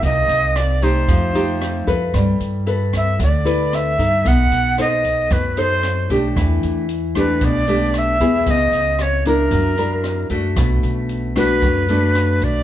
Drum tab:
HH |xxxxxxxx|xxxxxxxx|xxxxxxxx|xxxxxxxx|
SD |--r---r-|r--r--r-|--r---r-|r--r--r-|
BD |o--oo--o|o--oo--o|o--oo--o|o--oo--o|

HH |xxxxxxxx|xxxxxxxx|
SD |--r---r-|r--r--r-|
BD |o--oo--o|o--oo--o|